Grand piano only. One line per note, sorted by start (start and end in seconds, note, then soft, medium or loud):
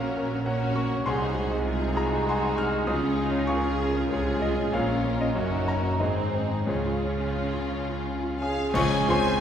0.00 1.03 A#1 soft
0.00 0.47 A#3 soft
0.00 0.02 C#4 soft
0.00 0.26 C#4 soft
0.00 0.17 A#4 soft
0.00 0.47 C#5 soft
0.00 0.43 F5 medium
0.00 0.46 F#5 medium
0.17 0.41 A#4 soft
0.33 0.57 C#4 soft
0.46 0.71 A#3 soft
0.46 0.75 A#4 soft
0.46 0.74 C#5 soft
0.46 0.74 F#5 medium
0.62 0.86 C#4 soft
0.75 1.00 A#3 soft
0.75 1.04 C#6 medium
0.92 1.06 C#4 soft
1.06 2.85 C2 medium
1.06 1.94 F#5 soft
1.06 1.94 G#5 medium
1.06 1.93 C6 medium
1.21 1.45 D#4 soft
1.35 1.60 G#3 soft
1.51 1.76 D#4 soft
1.66 1.91 G#3 soft
1.82 2.06 D#4 soft
1.96 2.21 G#4 medium
1.96 2.26 A#5 medium
2.10 2.36 D#4 medium
2.26 2.52 G#3 soft
2.26 2.57 F#5 soft
2.26 2.57 G#5 soft
2.26 2.57 C6 medium
2.42 2.67 D#4 soft
2.56 2.81 G#3 medium
2.56 2.86 F6 medium
2.71 2.87 D#4 soft
2.87 4.07 C#2 medium
2.87 3.44 D#6 medium
3.02 3.27 C#4 soft
3.16 3.42 G#3 soft
3.30 3.56 C#4 medium
3.47 3.74 G#3 medium
3.47 4.07 F5 medium
3.47 4.07 G#5 medium
3.47 4.06 C#6 medium
3.64 3.89 C#4 soft
3.80 4.05 G#4 medium
3.96 4.21 C#4 soft
4.11 4.36 G#3 soft
4.11 4.41 F4 soft
4.11 4.41 G#4 soft
4.11 4.40 C#5 medium
4.26 4.51 C#4 soft
4.40 4.66 G#3 medium
4.40 4.71 D#5 medium
4.56 4.72 C#4 soft
4.73 5.33 A#1 medium
4.73 5.17 A#4 medium
4.73 5.17 C#5 medium
4.73 5.17 F5 medium
4.88 5.13 C#4 soft
5.04 5.29 A#3 soft
5.20 5.36 C#4 soft
5.20 5.35 D#5 medium
5.35 5.98 F#2 medium
5.35 5.66 F#4 soft
5.35 5.66 A#4 soft
5.35 5.65 C#5 medium
5.52 5.77 D#4 soft
5.68 5.93 A#3 soft
5.68 5.98 A#5 medium
5.84 6.00 D#4 soft
6.00 6.66 G#2 soft
6.00 6.65 G#4 soft
6.00 6.65 C5 soft
6.00 6.64 D#5 medium
6.15 6.43 D#4 soft
6.34 6.62 C4 soft
6.51 6.68 D#4 soft
6.67 8.71 C#2 soft
6.67 6.84 F4 soft
6.67 8.37 G#4 soft
6.67 7.71 C#5 soft
6.86 7.14 F4 soft
7.02 7.31 C#4 soft
7.20 7.48 F4 soft
7.37 7.65 C#4 soft
7.54 7.82 F4 soft
7.72 8.00 C#5 soft
7.89 8.17 F4 soft
8.06 8.33 C#4 soft
8.23 8.51 F4 soft
8.41 8.68 C#4 soft
8.41 8.74 G#4 soft
8.41 8.73 G#5 medium
8.58 8.75 F4 soft
8.74 9.08 C#2 medium
8.74 9.08 C#3 medium
8.74 9.08 C#5 medium
8.74 9.08 G#5 medium
8.74 9.07 C#6 medium
9.08 9.39 C#4 medium
9.08 9.39 F4 soft
9.08 9.39 G#4 medium
9.08 9.40 C5 medium
9.08 9.40 C6 medium